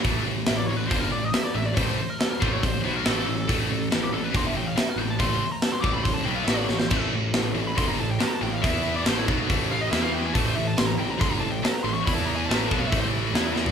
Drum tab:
CC |----------------|----------------|----------------|----------------|
HH |o---o---o---o---|o---o---o---o---|o---o---o---o---|o---o---o---o---|
SD |----o-------o---|----o-------o---|----o-------o---|----o-------o-oo|
FT |----------------|----------------|----------------|----------------|
BD |o-------o-------|o-----o-o-------|o-------o-------|o-----o-o-------|

CC |x---------------|----------------|----------------|----------------|
HH |----o---o---o---|o---o---o---o---|o---o---o---o---|o---o---o---o---|
SD |----o-------o---|----o-------o---|----o-------o---|----o-------o-o-|
FT |----------------|----------------|----------------|---------------o|
BD |o-------o-------|o-----o-o-------|o-------o-------|o-----o-o-------|